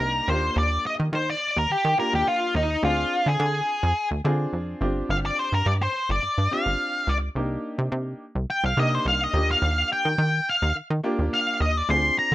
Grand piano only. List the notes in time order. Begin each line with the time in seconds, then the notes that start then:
Already playing: A#3 D4 D#4 G4
0.28 A#3 D4 F4 G4
1.98 A#3 D4 F4 G4
2.83 C4 D4 F4 G#4
4.24 C4 D4 F4 G#4
4.81 C4 D4 F4 G4
6.51 C4 D4 F4 G4
7.36 A#3 D4 D#4 G4
8.77 A#3 D4 D#4 G4
9.34 A#3 D4 F4 G4
11.03 A#3 D4 F4 G4
11.89 C4 D4 F4 G#4